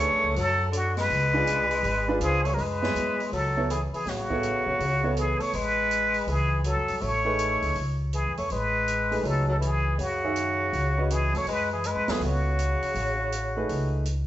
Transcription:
Already playing: grand piano A3 D4 G#4 B4, tenor saxophone A3, muted trumpet C#5
0.11 upright bass E2
0.24 upright bass C#2
0.36 upright bass F#2, tenor saxophone F#3, muted trumpet A4, open hi-hat
0.72 tenor saxophone D3, muted trumpet F#4, closed hi-hat
0.97 tenor saxophone G#3, muted trumpet B4, snare, open hi-hat
1.10 upright bass C#2, open hi-hat
1.34 grand piano D4 F4 G#4 B4
1.47 upright bass C2, closed hi-hat
1.71 open hi-hat
1.83 upright bass G#1, open hi-hat
2.08 grand piano D4 F4 G#4 B4
2.20 upright bass C#2, tenor saxophone F3, muted trumpet G#4, closed hi-hat
2.45 tenor saxophone A3, muted trumpet C#5, open hi-hat
2.52 tenor saxophone F#3, muted trumpet A#4
2.57 upright bass F#2, tenor saxophone G#3, open hi-hat
2.61 muted trumpet B4
2.82 grand piano B3 E4 G#4 C#5, snare
2.95 upright bass E2, closed hi-hat
3.20 open hi-hat
3.32 upright bass C#2, tenor saxophone F#3, muted trumpet A4, open hi-hat
3.57 grand piano B3 E4 A4 C#5
3.70 tenor saxophone E3, muted trumpet G#4, closed hi-hat
3.93 tenor saxophone E3, muted trumpet G#4, muted upright bass stroke, open hi-hat
4.06 upright bass A1, tenor saxophone C#3, muted trumpet F#4, snare, open hi-hat
4.30 grand piano B3 E4 A4 C#5, kick
4.43 closed hi-hat
4.66 upright bass F1
4.79 upright bass C#2, open hi-hat
5.03 grand piano B3 E4 A4 C#5
5.17 tenor saxophone E3, muted trumpet G#4, closed hi-hat
5.40 tenor saxophone A3, muted trumpet C#5, muted upright bass stroke, open hi-hat
5.53 upright bass A1, tenor saxophone G#3, muted trumpet B4, open hi-hat
5.91 closed hi-hat
6.14 open hi-hat
6.27 upright bass C#2, tenor saxophone E3, muted trumpet G#4, open hi-hat
6.64 tenor saxophone F#3, muted trumpet A4, closed hi-hat
6.77 upright bass F#2
6.88 upright bass G2, open hi-hat
7.01 upright bass A1, tenor saxophone A3, muted trumpet C#5, open hi-hat
7.25 grand piano A3 D#4 G#4 B4
7.39 closed hi-hat
7.62 upright bass C#2, open hi-hat
7.76 upright bass C#2, open hi-hat
8.13 tenor saxophone E3, muted trumpet G#4, closed hi-hat
8.27 upright bass F#2
8.37 upright bass E2, tenor saxophone A3, muted trumpet C#5, open hi-hat
8.50 upright bass A1, tenor saxophone G#3, muted trumpet B4, open hi-hat
8.88 closed hi-hat
9.11 grand piano A3 D#4 G#4 B4, open hi-hat
9.24 upright bass C#2, tenor saxophone F#3, muted trumpet A4, open hi-hat
9.48 tenor saxophone F#3, muted trumpet A4
9.61 tenor saxophone E3, closed hi-hat
9.66 muted trumpet G#4
9.98 upright bass F#2, tenor saxophone C#3, muted trumpet F#4, open hi-hat
10.24 grand piano D#3 G#4 C#5 E5
10.36 closed hi-hat
10.73 upright bass C#2, open hi-hat
10.98 grand piano C#4 F#4 B4 D#5
11.10 tenor saxophone E3, muted trumpet G#4, closed hi-hat
11.34 upright bass F2, tenor saxophone A3, muted trumpet C#5, open hi-hat
11.46 upright bass F#2, tenor saxophone G#3, muted trumpet B4, open hi-hat
11.72 tenor saxophone E3, muted trumpet G#4
11.84 tenor saxophone G#3, muted trumpet B4, closed hi-hat
11.95 upright bass G#2
12.08 upright bass E2, tenor saxophone E3, grand piano B3 E4 A4 C#5, muted trumpet G#4, snare, open hi-hat
12.20 upright bass C#2, tenor saxophone C#3, muted trumpet F#4, open hi-hat
12.59 closed hi-hat
12.82 muted upright bass stroke, open hi-hat
12.95 upright bass A1, open hi-hat
13.32 closed hi-hat
13.56 grand piano A3 D#4 G#4 B4
13.69 upright bass C#2, open hi-hat
14.05 closed hi-hat

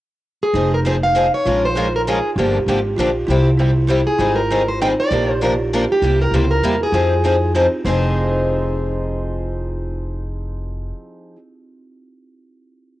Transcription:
0.43 steel-string acoustic guitar G#4
0.53 upright bass F1, steel-string acoustic guitar F3 C4 D#4 G#4, kalimba D#4
0.74 steel-string acoustic guitar A#4
0.85 steel-string acoustic guitar F3 C4 D#4 G#4 C5
1.03 steel-string acoustic guitar F5
1.15 steel-string acoustic guitar F3 C4 D#4 G#4
1.34 steel-string acoustic guitar C#5
1.46 upright bass A#1, steel-string acoustic guitar F3 G#3 C#4 F4 A#4, kalimba F4
1.65 steel-string acoustic guitar C5
1.77 steel-string acoustic guitar F3 G#3 C#4 F4 A#4
1.96 steel-string acoustic guitar A#4
2.08 steel-string acoustic guitar F3 G#3 C#4 F4 G#4 A#4
2.36 upright bass G1, steel-string acoustic guitar D3 F3 A#3 D4 G4, kalimba G4
2.66 upright bass G#1, steel-string acoustic guitar D3 F3 A#3 D4 G4
2.96 upright bass A#1, steel-string acoustic guitar D3 F3 A#3 D4 G4, kalimba F4
3.27 upright bass C2, steel-string acoustic guitar C3 G3 C4, kalimba E4
3.31 steel-string acoustic guitar E4 G4
3.58 steel-string acoustic guitar C3 G3 C4 E4 G4, kalimba E4
3.90 steel-string acoustic guitar C3 G3 C4 E4 G4
4.07 steel-string acoustic guitar G#4
4.19 upright bass G#1, steel-string acoustic guitar D#3 G3 C4 D#4 G#4, kalimba F4
4.36 steel-string acoustic guitar A#4
4.52 steel-string acoustic guitar D#3 G3 C4 D#4 G#4
4.68 steel-string acoustic guitar C5
4.82 steel-string acoustic guitar D#3 G3 C4 D#4 G#4 G5, kalimba D#4
5.00 steel-string acoustic guitar D5
5.11 upright bass A#1, steel-string acoustic guitar C3 F3 A#3 D4 A#4, kalimba G4
5.41 steel-string acoustic guitar C3 F3 A#3 D4 A#4, kalimba F4
5.73 steel-string acoustic guitar C3 F3 A#3 D4 A#4
5.92 steel-string acoustic guitar G4
6.02 upright bass C2, steel-string acoustic guitar C3 G3 A#3 E4 G4, kalimba E4
6.21 steel-string acoustic guitar A#4
6.31 upright bass C#2, steel-string acoustic guitar C3 G3 A#3 E4 G4
6.35 steel-string acoustic guitar C5
6.51 steel-string acoustic guitar A#4
6.62 upright bass E2, steel-string acoustic guitar C3 G3 A#3 E4 G4
6.83 steel-string acoustic guitar G#4
6.92 upright bass F2, steel-string acoustic guitar F3 C4 D#4 G#4, kalimba F4
7.24 steel-string acoustic guitar F3 C4 D#4 G#4, kalimba D#4
7.54 steel-string acoustic guitar F3 C4 D#4 G#4, kalimba C4
7.85 upright bass F1, steel-string acoustic guitar F3 C4 D#4 G#4 C5, kalimba C4

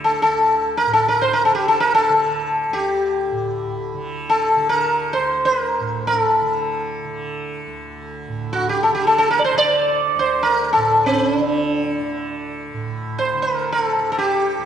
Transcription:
Already playing: tanpura D2 A2 D3
0.04 sitar A4
0.22 tanpura D2, sitar A4
0.77 sitar A#4
0.86 tanpura A2
0.93 sitar A4
1.08 sitar A#4
1.22 sitar C5
1.33 sitar A#4
1.45 tanpura D3, sitar A4
1.55 sitar G4
1.68 sitar A4
1.80 sitar A#4
1.95 sitar A4
2.10 tanpura D3
2.69 tanpura D2, sitar G4
3.32 tanpura A2
3.94 tanpura D3
4.30 sitar A4
4.57 tanpura D3
4.69 sitar A#4
5.13 sitar C5
5.17 tanpura D2
5.45 sitar B4
5.60 sitar A#4
5.80 tanpura A2
6.07 sitar A#4
6.18 sitar A4
6.42 tanpura D3
7.04 tanpura D3
7.67 tanpura D2
8.28 tanpura A2
8.53 sitar F#4
8.69 sitar G4
8.83 sitar A4
8.90 tanpura D3
8.95 sitar G4
9.07 sitar A4
9.18 sitar A4
9.31 sitar A#4
9.39 sitar D5
9.44 sitar C5
9.54 tanpura D3, sitar D5
10.15 tanpura D2
10.19 sitar C5
10.43 sitar A#4
10.73 tanpura A2, sitar A4
11.06 sitar C4
11.26 sitar C#4
11.37 tanpura D3, sitar D4
12.01 tanpura D3
12.73 tanpura A2
13.19 sitar C5
13.34 tanpura D3
13.42 sitar A#4
13.72 sitar A4
13.97 tanpura D3
14.12 sitar A4
14.18 sitar G4
14.59 tanpura D2

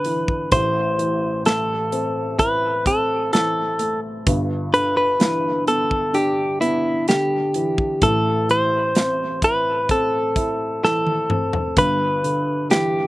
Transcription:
Already playing: upright piano G1 G2 D3 B3 D4, clean electric guitar B4
0.05 upright piano E3, closed hi-hat
0.28 kick
0.52 upright piano A1 A2, clean electric guitar C5, kick, closed hi-hat
0.99 upright piano E3, closed hi-hat
1.45 upright piano A3, clean electric guitar A4, snare, closed hi-hat
1.92 upright piano C4, closed hi-hat
2.39 upright piano E4, clean electric guitar B4, kick, closed hi-hat
2.86 upright piano C4, clean electric guitar A4, kick, closed hi-hat
3.33 upright piano E3, clean electric guitar A4, snare, closed hi-hat
3.79 upright piano A3, closed hi-hat
4.27 upright piano G1 G2, kick, closed hi-hat
4.73 upright piano D3, clean electric guitar B4, closed hi-hat
4.97 clean electric guitar B4
5.19 upright piano E3, snare, closed hi-hat
5.67 upright piano B3, clean electric guitar A4, closed hi-hat
5.91 kick
6.13 upright piano D4, clean electric guitar G4, closed hi-hat
6.61 upright piano B3, clean electric guitar E4, closed hi-hat
7.08 upright piano D3, clean electric guitar G4, snare, closed hi-hat
7.54 upright piano E3, closed hi-hat
7.78 kick
8.02 upright piano A1 A2, clean electric guitar A4, kick, closed hi-hat
8.49 upright piano E3, clean electric guitar C5, closed hi-hat
8.95 upright piano C4, snare, closed hi-hat
9.42 upright piano E4, clean electric guitar B4, kick, closed hi-hat
9.89 upright piano C4, clean electric guitar A4, kick, closed hi-hat
10.36 upright piano E4, kick, closed hi-hat
10.83 upright piano E3, clean electric guitar A4, snare
11.07 high tom
11.30 upright piano C4, mid tom
11.53 floor tom
11.77 upright piano G1 G2, clean electric guitar B4, kick, closed hi-hat
12.24 upright piano D3, closed hi-hat
12.70 upright piano E3, clean electric guitar G4, snare, closed hi-hat

